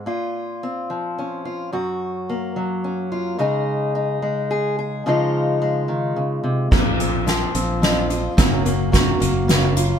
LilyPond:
<<
  \new Staff \with { instrumentName = "Steel-string acoustic guitar" } { \time 6/8 \key bes \minor \tempo 4. = 72 << { f'4 c'4 des'8 f'8 | ges'4 bes4 des'8 f'8 | <aes ees' aes'>4 ees'4 aes'8 aes'8 | <f aes ees' f'>4 aes2 |
r8 c'8 f'8 c'4 f'8 | <ges bes des' ges'>8 bes8 ges'8 bes4 f'8 | } \\ { bes,4. f4. | ges,4. ges4. | des4. aes4. | des4. ees8 des8 c8 |
bes,4 f4 f,4 | ges,4 ges4 des4 | } >> }
  \new Staff \with { instrumentName = "Fingered electric bass" } { \clef bass \time 6/8 \key bes \minor r2. | r2. | r2. | r2. |
bes,,4. bes,,4. | ges,,4. ges,,4. | }
  \new DrumStaff \with { instrumentName = "Drums" } \drummode { \time 6/8 r4. r4. | r4. r4. | r4. r4. | r4. r4. |
<cymc bd sn>8 hh8 <hh sn>8 hh8 <hh sn>8 hh8 | <hh bd sn>8 hh8 <hh bd sn>8 hh8 <hh sn>8 hh8 | }
>>